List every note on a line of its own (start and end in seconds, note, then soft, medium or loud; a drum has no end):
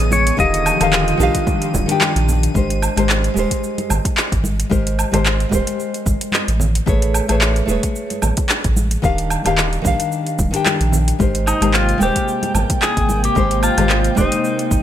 0.00 0.31 A1 medium
0.00 0.36 C#3 medium
0.00 0.34 A3 medium
0.00 0.36 B3 medium
0.00 0.35 G#4 medium
0.00 0.36 G#4 loud
0.00 0.36 B4 medium
0.00 0.37 C#5 medium
0.00 0.15 D#5 medium
0.00 2.56 D#7 medium
0.00 cabasa soft
0.11 0.39 C#5 medium
0.11 high conga medium
0.11 low conga medium
0.11 cabasa medium
0.27 closed hi-hat medium
0.27 cabasa soft
0.37 0.72 D#1 loud
0.37 0.77 D3 medium
0.37 0.76 D#3 loud
0.37 2.52 F3 medium
0.37 2.52 F4 medium
0.37 2.53 G4 medium
0.37 0.77 G4 medium
0.37 1.43 D#5 loud
0.37 0.78 F5 loud
0.37 kick loud
0.37 cabasa soft
0.54 closed hi-hat soft
0.54 cabasa soft
0.66 cabasa medium
0.66 low woodblock medium
0.80 1.13 D#1 loud
0.80 1.17 D3 medium
0.80 1.16 D#3 medium
0.80 1.17 G4 medium
0.80 1.18 F5 medium
0.80 closed hi-hat medium
0.80 cabasa soft
0.80 low woodblock medium
0.93 clap loud
0.93 cabasa soft
1.08 closed hi-hat soft
1.08 cabasa soft
1.17 1.29 A#1 medium
1.17 1.85 D#3 medium
1.17 1.86 D4 medium
1.17 1.86 G4 medium
1.17 high conga medium
1.17 cabasa medium
1.23 1.87 F5 loud
1.35 kick medium
1.35 closed hi-hat medium
1.35 cabasa soft
1.47 kick loud
1.47 high conga medium
1.47 cabasa soft
1.62 closed hi-hat soft
1.62 cabasa soft
1.74 1.83 D#1 medium
1.74 kick medium
1.74 high conga medium
1.74 low conga medium
1.74 cabasa medium
1.86 2.51 D#3 medium
1.86 2.52 D4 medium
1.86 2.53 G4 medium
1.86 closed hi-hat medium
1.86 cabasa soft
1.92 2.53 G5 medium
2.01 clap loud
2.01 high conga medium
2.01 cabasa soft
2.16 2.48 A#1 loud
2.16 closed hi-hat soft
2.16 cabasa soft
2.28 low conga medium
2.28 cabasa medium
2.43 closed hi-hat medium
2.43 cabasa soft
2.54 2.88 G#1 loud
2.54 2.93 G#3 medium
2.54 2.93 G4 medium
2.54 2.94 A#4 medium
2.54 2.94 C5 medium
2.54 kick loud
2.54 cabasa soft
2.70 closed hi-hat soft
2.70 cabasa soft
2.82 cabasa medium
2.82 low woodblock medium
2.96 3.29 G#1 loud
2.96 3.33 G#3 medium
2.96 3.33 G4 medium
2.96 3.34 A#4 medium
2.96 3.34 C5 medium
2.96 closed hi-hat soft
2.96 cabasa soft
2.96 low woodblock medium
3.09 clap loud
3.09 cabasa soft
3.24 closed hi-hat soft
3.24 cabasa soft
3.34 3.45 D#1 medium
3.34 4.67 G#3 medium
3.34 4.68 G4 medium
3.34 4.69 A#4 medium
3.34 high conga medium
3.34 cabasa medium
3.39 4.70 C5 medium
3.51 kick medium
3.51 closed hi-hat medium
3.51 cabasa soft
3.64 cabasa soft
3.78 closed hi-hat soft
3.78 high conga medium
3.78 cabasa soft
3.90 4.00 G#1 medium
3.90 high conga medium
3.90 low conga medium
3.90 cabasa medium
3.90 low woodblock medium
4.05 kick loud
4.05 closed hi-hat soft
4.05 cabasa soft
4.17 clap loud
4.17 cabasa soft
4.32 4.64 G#1 medium
4.32 kick loud
4.32 closed hi-hat soft
4.32 cabasa soft
4.44 high conga medium
4.44 cabasa medium
4.60 closed hi-hat medium
4.60 cabasa soft
4.69 5.04 G#1 loud
4.69 5.09 G#3 medium
4.69 5.09 G4 medium
4.69 5.10 A#4 medium
4.69 5.10 C5 loud
4.69 kick loud
4.69 cabasa soft
4.87 closed hi-hat soft
4.87 cabasa soft
4.99 cabasa medium
4.99 low woodblock medium
5.12 5.45 G#1 medium
5.12 5.48 G#3 medium
5.12 5.49 G4 medium
5.12 5.50 A#4 medium
5.12 5.50 C5 medium
5.12 closed hi-hat soft
5.12 low conga medium
5.12 cabasa soft
5.12 low woodblock medium
5.26 clap loud
5.26 cabasa soft
5.40 closed hi-hat soft
5.40 cabasa soft
5.49 5.62 D#1 medium
5.49 6.57 G#3 medium
5.49 6.58 G4 medium
5.49 6.59 A#4 medium
5.49 kick medium
5.49 high conga medium
5.49 low conga medium
5.49 cabasa medium
5.55 6.60 C5 medium
5.67 closed hi-hat medium
5.67 cabasa soft
5.80 cabasa soft
5.94 closed hi-hat soft
5.94 cabasa soft
6.06 6.16 G#1 loud
6.06 kick loud
6.06 high conga medium
6.06 cabasa medium
6.21 closed hi-hat soft
6.21 cabasa soft
6.32 clap medium
6.32 high conga medium
6.32 cabasa soft
6.48 6.80 A1 medium
6.48 closed hi-hat soft
6.48 cabasa soft
6.60 low conga medium
6.60 cabasa medium
6.75 closed hi-hat medium
6.75 cabasa soft
6.86 7.21 A1 loud
6.86 7.25 A3 medium
6.86 7.26 G#4 medium
6.86 7.26 B4 medium
6.86 7.26 C#5 medium
6.86 kick loud
6.86 cabasa soft
7.02 closed hi-hat soft
7.02 cabasa soft
7.14 cabasa medium
7.14 low woodblock medium
7.28 7.61 A1 medium
7.28 7.64 A3 medium
7.28 7.65 G#4 medium
7.28 7.66 B4 medium
7.28 7.66 C#5 medium
7.28 closed hi-hat soft
7.28 cabasa soft
7.28 low woodblock medium
7.41 clap loud
7.41 cabasa soft
7.56 closed hi-hat soft
7.56 cabasa soft
7.66 7.78 E1 medium
7.66 8.99 A3 medium
7.66 9.00 G#4 medium
7.66 9.01 B4 medium
7.66 high conga medium
7.66 cabasa medium
7.71 9.02 C#5 medium
7.83 kick medium
7.83 closed hi-hat medium
7.83 cabasa soft
7.96 cabasa soft
8.10 closed hi-hat soft
8.10 high conga medium
8.10 cabasa soft
8.22 8.32 A1 medium
8.22 high conga medium
8.22 low conga medium
8.22 cabasa medium
8.22 low woodblock medium
8.37 kick loud
8.37 closed hi-hat soft
8.37 cabasa soft
8.49 clap loud
8.49 cabasa soft
8.64 8.97 A1 medium
8.64 kick loud
8.64 closed hi-hat soft
8.64 cabasa soft
8.76 high conga medium
8.76 cabasa medium
8.91 closed hi-hat soft
8.91 cabasa soft
9.02 9.37 D#1 loud
9.02 9.41 D#3 medium
9.02 9.42 D4 medium
9.02 9.42 G4 medium
9.02 9.43 F5 loud
9.02 kick loud
9.02 cabasa soft
9.18 closed hi-hat soft
9.18 cabasa soft
9.30 cabasa medium
9.30 low woodblock medium
9.44 9.78 D#1 loud
9.44 9.80 D#3 medium
9.44 9.81 D4 medium
9.44 9.82 G4 medium
9.44 9.83 F5 medium
9.44 closed hi-hat soft
9.44 low conga medium
9.44 cabasa soft
9.44 low woodblock medium
9.58 clap loud
9.58 cabasa soft
9.73 closed hi-hat soft
9.73 cabasa soft
9.82 9.94 A#1 medium
9.82 10.49 D#3 medium
9.82 10.50 D4 medium
9.82 10.51 G4 medium
9.82 kick loud
9.82 high conga medium
9.82 low conga medium
9.82 cabasa medium
9.87 10.52 F5 medium
10.00 closed hi-hat soft
10.00 cabasa soft
10.12 cabasa soft
10.27 closed hi-hat soft
10.27 cabasa soft
10.39 10.48 D#1 medium
10.39 kick loud
10.39 high conga medium
10.39 cabasa medium
10.51 11.15 D#3 medium
10.51 11.16 D4 medium
10.51 11.17 G4 medium
10.51 closed hi-hat soft
10.51 cabasa soft
10.56 11.18 G5 loud
10.66 clap medium
10.66 high conga medium
10.66 cabasa soft
10.80 11.13 A#1 medium
10.80 closed hi-hat soft
10.80 cabasa soft
10.92 low conga medium
10.92 cabasa medium
11.08 closed hi-hat soft
11.08 cabasa soft
11.19 11.53 G#1 loud
11.19 14.83 C3 medium
11.19 11.58 G#3 medium
11.19 14.83 A#3 medium
11.19 11.58 G4 medium
11.19 11.59 A#4 medium
11.19 11.59 C5 medium
11.19 14.83 G5 medium
11.19 kick loud
11.19 cabasa soft
11.35 closed hi-hat soft
11.35 cabasa soft
11.47 11.72 D#4 medium
11.47 cabasa medium
11.47 low woodblock medium
11.60 11.94 G#1 loud
11.60 11.97 G#3 medium
11.60 11.98 G4 medium
11.60 11.98 A#4 medium
11.60 11.99 C5 medium
11.60 closed hi-hat soft
11.60 cabasa soft
11.60 low woodblock medium
11.74 12.02 F4 medium
11.74 clap medium
11.74 cabasa soft
11.89 closed hi-hat soft
11.89 cabasa soft
11.98 12.10 D#1 medium
11.98 13.32 G#3 medium
11.98 13.33 A#4 medium
11.98 13.33 G5 medium
11.98 high conga medium
11.98 cabasa medium
12.03 12.52 G4 loud
12.03 13.34 C5 medium
12.16 kick medium
12.16 closed hi-hat medium
12.16 cabasa soft
12.28 cabasa soft
12.43 closed hi-hat soft
12.43 high conga medium
12.43 cabasa soft
12.54 12.64 G#1 medium
12.54 high conga medium
12.54 low conga medium
12.54 cabasa medium
12.54 low woodblock medium
12.70 kick loud
12.70 closed hi-hat soft
12.70 cabasa soft
12.82 13.21 G#4 loud
12.82 clap medium
12.82 cabasa soft
12.97 13.29 G#1 medium
12.97 kick medium
12.97 closed hi-hat soft
12.97 cabasa soft
13.09 high conga medium
13.09 cabasa medium
13.24 13.61 G4 loud
13.24 closed hi-hat medium
13.24 cabasa soft
13.35 13.69 G#1 loud
13.35 13.74 G#3 loud
13.35 13.74 G4 medium
13.35 13.75 A#4 medium
13.35 13.75 C5 loud
13.35 kick loud
13.35 cabasa soft
13.51 closed hi-hat soft
13.51 cabasa soft
13.63 14.14 F4 medium
13.63 cabasa medium
13.63 low woodblock medium
13.77 14.10 G#1 loud
13.77 14.14 G#3 medium
13.77 14.14 G4 medium
13.77 14.15 A#4 medium
13.77 14.15 C5 medium
13.77 closed hi-hat soft
13.77 low conga medium
13.77 cabasa soft
13.77 low woodblock medium
13.89 clap medium
13.89 cabasa soft
14.04 closed hi-hat soft
14.04 cabasa soft
14.15 14.27 D#1 medium
14.15 14.83 G#3 medium
14.15 14.83 D#4 medium
14.15 14.83 G4 medium
14.15 14.83 A#4 medium
14.15 kick medium
14.15 high conga medium
14.15 low conga medium
14.15 cabasa medium
14.20 14.83 C5 medium
14.32 closed hi-hat soft
14.32 cabasa soft
14.44 cabasa soft
14.59 closed hi-hat soft
14.59 cabasa soft
14.71 14.81 G#1 medium
14.71 kick loud
14.71 high conga medium
14.71 cabasa medium